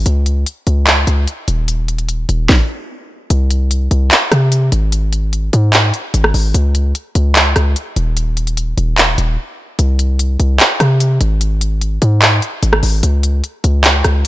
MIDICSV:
0, 0, Header, 1, 3, 480
1, 0, Start_track
1, 0, Tempo, 405405
1, 70, Time_signature, 4, 2, 24, 8
1, 16903, End_track
2, 0, Start_track
2, 0, Title_t, "808-style bass"
2, 0, Program_c, 0, 38
2, 70, Note_on_c, 0, 37, 104
2, 531, Note_off_c, 0, 37, 0
2, 791, Note_on_c, 0, 37, 102
2, 1251, Note_off_c, 0, 37, 0
2, 1269, Note_on_c, 0, 37, 103
2, 1500, Note_off_c, 0, 37, 0
2, 1751, Note_on_c, 0, 27, 99
2, 2672, Note_off_c, 0, 27, 0
2, 2710, Note_on_c, 0, 27, 102
2, 2940, Note_off_c, 0, 27, 0
2, 3911, Note_on_c, 0, 36, 109
2, 4602, Note_off_c, 0, 36, 0
2, 4630, Note_on_c, 0, 36, 106
2, 4860, Note_off_c, 0, 36, 0
2, 5110, Note_on_c, 0, 48, 105
2, 5571, Note_off_c, 0, 48, 0
2, 5590, Note_on_c, 0, 32, 103
2, 6512, Note_off_c, 0, 32, 0
2, 6550, Note_on_c, 0, 44, 108
2, 7011, Note_off_c, 0, 44, 0
2, 7269, Note_on_c, 0, 32, 109
2, 7500, Note_off_c, 0, 32, 0
2, 7509, Note_on_c, 0, 32, 102
2, 7740, Note_off_c, 0, 32, 0
2, 7748, Note_on_c, 0, 37, 111
2, 8210, Note_off_c, 0, 37, 0
2, 8470, Note_on_c, 0, 37, 107
2, 8931, Note_off_c, 0, 37, 0
2, 8949, Note_on_c, 0, 37, 107
2, 9180, Note_off_c, 0, 37, 0
2, 9429, Note_on_c, 0, 27, 105
2, 10351, Note_off_c, 0, 27, 0
2, 10390, Note_on_c, 0, 27, 102
2, 10851, Note_off_c, 0, 27, 0
2, 10869, Note_on_c, 0, 27, 103
2, 11100, Note_off_c, 0, 27, 0
2, 11589, Note_on_c, 0, 36, 109
2, 12281, Note_off_c, 0, 36, 0
2, 12309, Note_on_c, 0, 36, 101
2, 12540, Note_off_c, 0, 36, 0
2, 12788, Note_on_c, 0, 48, 104
2, 13250, Note_off_c, 0, 48, 0
2, 13269, Note_on_c, 0, 32, 104
2, 14191, Note_off_c, 0, 32, 0
2, 14229, Note_on_c, 0, 44, 105
2, 14690, Note_off_c, 0, 44, 0
2, 14950, Note_on_c, 0, 32, 108
2, 15180, Note_off_c, 0, 32, 0
2, 15190, Note_on_c, 0, 32, 107
2, 15421, Note_off_c, 0, 32, 0
2, 15429, Note_on_c, 0, 37, 105
2, 15891, Note_off_c, 0, 37, 0
2, 16151, Note_on_c, 0, 37, 106
2, 16611, Note_off_c, 0, 37, 0
2, 16630, Note_on_c, 0, 37, 106
2, 16860, Note_off_c, 0, 37, 0
2, 16903, End_track
3, 0, Start_track
3, 0, Title_t, "Drums"
3, 69, Note_on_c, 9, 42, 91
3, 187, Note_off_c, 9, 42, 0
3, 309, Note_on_c, 9, 42, 75
3, 427, Note_off_c, 9, 42, 0
3, 550, Note_on_c, 9, 42, 80
3, 668, Note_off_c, 9, 42, 0
3, 790, Note_on_c, 9, 42, 66
3, 908, Note_off_c, 9, 42, 0
3, 1030, Note_on_c, 9, 39, 115
3, 1030, Note_on_c, 9, 42, 85
3, 1148, Note_off_c, 9, 39, 0
3, 1149, Note_off_c, 9, 42, 0
3, 1270, Note_on_c, 9, 42, 76
3, 1388, Note_off_c, 9, 42, 0
3, 1510, Note_on_c, 9, 42, 83
3, 1628, Note_off_c, 9, 42, 0
3, 1750, Note_on_c, 9, 42, 78
3, 1868, Note_off_c, 9, 42, 0
3, 1990, Note_on_c, 9, 42, 85
3, 2108, Note_off_c, 9, 42, 0
3, 2231, Note_on_c, 9, 42, 76
3, 2349, Note_off_c, 9, 42, 0
3, 2350, Note_on_c, 9, 42, 42
3, 2469, Note_off_c, 9, 42, 0
3, 2470, Note_on_c, 9, 42, 78
3, 2588, Note_off_c, 9, 42, 0
3, 2710, Note_on_c, 9, 42, 65
3, 2829, Note_off_c, 9, 42, 0
3, 2950, Note_on_c, 9, 36, 112
3, 2950, Note_on_c, 9, 38, 95
3, 3068, Note_off_c, 9, 36, 0
3, 3068, Note_off_c, 9, 38, 0
3, 3910, Note_on_c, 9, 42, 88
3, 4028, Note_off_c, 9, 42, 0
3, 4150, Note_on_c, 9, 42, 78
3, 4269, Note_off_c, 9, 42, 0
3, 4390, Note_on_c, 9, 42, 81
3, 4509, Note_off_c, 9, 42, 0
3, 4630, Note_on_c, 9, 42, 70
3, 4749, Note_off_c, 9, 42, 0
3, 4870, Note_on_c, 9, 39, 120
3, 4870, Note_on_c, 9, 42, 89
3, 4988, Note_off_c, 9, 39, 0
3, 4988, Note_off_c, 9, 42, 0
3, 5110, Note_on_c, 9, 37, 75
3, 5110, Note_on_c, 9, 42, 77
3, 5228, Note_off_c, 9, 37, 0
3, 5229, Note_off_c, 9, 42, 0
3, 5349, Note_on_c, 9, 42, 86
3, 5468, Note_off_c, 9, 42, 0
3, 5590, Note_on_c, 9, 42, 82
3, 5708, Note_off_c, 9, 42, 0
3, 5829, Note_on_c, 9, 42, 90
3, 5947, Note_off_c, 9, 42, 0
3, 6069, Note_on_c, 9, 42, 73
3, 6187, Note_off_c, 9, 42, 0
3, 6309, Note_on_c, 9, 42, 80
3, 6428, Note_off_c, 9, 42, 0
3, 6549, Note_on_c, 9, 42, 70
3, 6668, Note_off_c, 9, 42, 0
3, 6789, Note_on_c, 9, 39, 120
3, 6789, Note_on_c, 9, 42, 91
3, 6907, Note_off_c, 9, 39, 0
3, 6907, Note_off_c, 9, 42, 0
3, 7029, Note_on_c, 9, 42, 81
3, 7148, Note_off_c, 9, 42, 0
3, 7269, Note_on_c, 9, 42, 88
3, 7388, Note_off_c, 9, 42, 0
3, 7390, Note_on_c, 9, 37, 93
3, 7508, Note_off_c, 9, 37, 0
3, 7509, Note_on_c, 9, 46, 88
3, 7628, Note_off_c, 9, 46, 0
3, 7749, Note_on_c, 9, 42, 89
3, 7867, Note_off_c, 9, 42, 0
3, 7990, Note_on_c, 9, 42, 75
3, 8108, Note_off_c, 9, 42, 0
3, 8229, Note_on_c, 9, 42, 83
3, 8347, Note_off_c, 9, 42, 0
3, 8469, Note_on_c, 9, 42, 69
3, 8587, Note_off_c, 9, 42, 0
3, 8709, Note_on_c, 9, 39, 118
3, 8709, Note_on_c, 9, 42, 86
3, 8827, Note_off_c, 9, 39, 0
3, 8827, Note_off_c, 9, 42, 0
3, 8949, Note_on_c, 9, 37, 73
3, 8949, Note_on_c, 9, 42, 78
3, 9067, Note_off_c, 9, 37, 0
3, 9067, Note_off_c, 9, 42, 0
3, 9189, Note_on_c, 9, 42, 86
3, 9308, Note_off_c, 9, 42, 0
3, 9430, Note_on_c, 9, 42, 81
3, 9548, Note_off_c, 9, 42, 0
3, 9669, Note_on_c, 9, 42, 90
3, 9788, Note_off_c, 9, 42, 0
3, 9909, Note_on_c, 9, 42, 77
3, 10028, Note_off_c, 9, 42, 0
3, 10030, Note_on_c, 9, 42, 45
3, 10148, Note_off_c, 9, 42, 0
3, 10150, Note_on_c, 9, 42, 81
3, 10269, Note_off_c, 9, 42, 0
3, 10391, Note_on_c, 9, 42, 69
3, 10509, Note_off_c, 9, 42, 0
3, 10630, Note_on_c, 9, 39, 115
3, 10630, Note_on_c, 9, 42, 90
3, 10749, Note_off_c, 9, 39, 0
3, 10749, Note_off_c, 9, 42, 0
3, 10870, Note_on_c, 9, 42, 81
3, 10988, Note_off_c, 9, 42, 0
3, 11589, Note_on_c, 9, 42, 91
3, 11708, Note_off_c, 9, 42, 0
3, 11830, Note_on_c, 9, 42, 75
3, 11948, Note_off_c, 9, 42, 0
3, 12069, Note_on_c, 9, 42, 82
3, 12188, Note_off_c, 9, 42, 0
3, 12309, Note_on_c, 9, 42, 69
3, 12427, Note_off_c, 9, 42, 0
3, 12549, Note_on_c, 9, 39, 121
3, 12549, Note_on_c, 9, 42, 92
3, 12667, Note_off_c, 9, 39, 0
3, 12667, Note_off_c, 9, 42, 0
3, 12789, Note_on_c, 9, 37, 72
3, 12789, Note_on_c, 9, 42, 78
3, 12907, Note_off_c, 9, 37, 0
3, 12907, Note_off_c, 9, 42, 0
3, 13029, Note_on_c, 9, 42, 87
3, 13147, Note_off_c, 9, 42, 0
3, 13268, Note_on_c, 9, 42, 82
3, 13387, Note_off_c, 9, 42, 0
3, 13508, Note_on_c, 9, 42, 89
3, 13627, Note_off_c, 9, 42, 0
3, 13749, Note_on_c, 9, 42, 75
3, 13867, Note_off_c, 9, 42, 0
3, 13989, Note_on_c, 9, 42, 80
3, 14107, Note_off_c, 9, 42, 0
3, 14229, Note_on_c, 9, 42, 69
3, 14347, Note_off_c, 9, 42, 0
3, 14469, Note_on_c, 9, 39, 115
3, 14469, Note_on_c, 9, 42, 87
3, 14587, Note_off_c, 9, 39, 0
3, 14587, Note_off_c, 9, 42, 0
3, 14709, Note_on_c, 9, 42, 77
3, 14827, Note_off_c, 9, 42, 0
3, 14949, Note_on_c, 9, 42, 90
3, 15068, Note_off_c, 9, 42, 0
3, 15069, Note_on_c, 9, 37, 98
3, 15187, Note_off_c, 9, 37, 0
3, 15188, Note_on_c, 9, 46, 88
3, 15307, Note_off_c, 9, 46, 0
3, 15428, Note_on_c, 9, 42, 92
3, 15547, Note_off_c, 9, 42, 0
3, 15669, Note_on_c, 9, 42, 76
3, 15787, Note_off_c, 9, 42, 0
3, 15909, Note_on_c, 9, 42, 83
3, 16028, Note_off_c, 9, 42, 0
3, 16150, Note_on_c, 9, 42, 68
3, 16268, Note_off_c, 9, 42, 0
3, 16390, Note_on_c, 9, 39, 121
3, 16390, Note_on_c, 9, 42, 92
3, 16508, Note_off_c, 9, 39, 0
3, 16508, Note_off_c, 9, 42, 0
3, 16629, Note_on_c, 9, 37, 73
3, 16629, Note_on_c, 9, 42, 79
3, 16747, Note_off_c, 9, 37, 0
3, 16747, Note_off_c, 9, 42, 0
3, 16903, End_track
0, 0, End_of_file